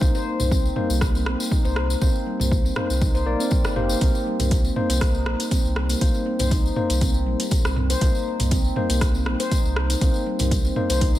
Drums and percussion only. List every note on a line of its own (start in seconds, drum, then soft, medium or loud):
0.01 kick loud
0.01 tambourine medium
0.15 tambourine soft
0.40 mid tom medium
0.40 tambourine medium
0.52 kick loud
0.52 tambourine medium
0.65 tambourine soft
0.76 mid tom medium
0.90 tambourine medium
1.01 kick loud
1.01 cross-stick medium
1.01 tambourine medium
1.15 tambourine soft
1.26 cross-stick medium
1.40 tambourine medium
1.52 kick loud
1.52 tambourine medium
1.65 tambourine soft
1.76 cross-stick medium
1.90 tambourine medium
2.01 kick loud
2.01 tambourine medium
2.15 tambourine soft
2.40 mid tom medium
2.40 tambourine medium
2.52 kick loud
2.52 tambourine medium
2.66 tambourine soft
2.76 cross-stick medium
2.76 mid tom medium
2.90 tambourine medium
3.01 kick loud
3.01 tambourine medium
3.15 tambourine soft
3.40 tambourine medium
3.51 kick loud
3.51 tambourine medium
3.64 cross-stick medium
3.64 tambourine soft
3.76 mid tom medium
3.89 tambourine medium
4.01 kick loud
4.01 closed hi-hat soft
4.01 tambourine medium
4.15 tambourine soft
4.40 closed hi-hat soft
4.40 mid tom medium
4.40 tambourine medium
4.51 kick loud
4.51 closed hi-hat soft
4.51 tambourine medium
4.64 tambourine soft
4.76 mid tom medium
4.90 closed hi-hat soft
4.90 tambourine medium
5.01 kick loud
5.01 cross-stick medium
5.01 closed hi-hat soft
5.01 tambourine medium
5.15 tambourine soft
5.26 cross-stick medium
5.40 closed hi-hat medium
5.40 tambourine medium
5.51 kick loud
5.51 closed hi-hat soft
5.51 tambourine medium
5.65 tambourine soft
5.76 cross-stick medium
5.89 closed hi-hat medium
5.89 tambourine medium
6.01 kick loud
6.01 closed hi-hat soft
6.01 tambourine medium
6.14 tambourine soft
6.39 closed hi-hat medium
6.39 mid tom medium
6.39 tambourine medium
6.51 kick loud
6.51 closed hi-hat soft
6.51 tambourine medium
6.66 tambourine soft
6.76 mid tom medium
6.90 closed hi-hat medium
6.90 tambourine medium
7.01 kick loud
7.01 closed hi-hat soft
7.01 tambourine medium
7.14 tambourine soft
7.40 closed hi-hat medium
7.40 tambourine medium
7.51 kick loud
7.51 closed hi-hat soft
7.51 tambourine medium
7.65 cross-stick medium
7.65 tambourine soft
7.76 mid tom medium
7.90 closed hi-hat medium
7.90 tambourine medium
8.01 kick loud
8.01 closed hi-hat soft
8.01 tambourine medium
8.15 tambourine soft
8.40 closed hi-hat medium
8.40 mid tom medium
8.40 tambourine medium
8.51 kick loud
8.51 closed hi-hat soft
8.51 tambourine medium
8.64 tambourine soft
8.76 mid tom medium
8.90 closed hi-hat medium
8.90 tambourine medium
9.01 kick loud
9.01 cross-stick medium
9.01 closed hi-hat soft
9.01 tambourine medium
9.14 tambourine soft
9.26 cross-stick medium
9.40 closed hi-hat medium
9.40 tambourine medium
9.51 kick loud
9.51 closed hi-hat soft
9.51 tambourine medium
9.65 tambourine soft
9.76 cross-stick medium
9.90 closed hi-hat medium
9.90 tambourine medium
10.01 kick loud
10.01 closed hi-hat soft
10.01 tambourine medium
10.14 tambourine soft
10.39 closed hi-hat medium
10.39 mid tom medium
10.39 tambourine medium
10.51 kick loud
10.51 closed hi-hat soft
10.51 tambourine medium
10.65 tambourine soft
10.76 mid tom medium
10.90 closed hi-hat medium
10.90 tambourine medium
11.01 kick loud
11.01 closed hi-hat soft
11.01 tambourine medium
11.15 tambourine soft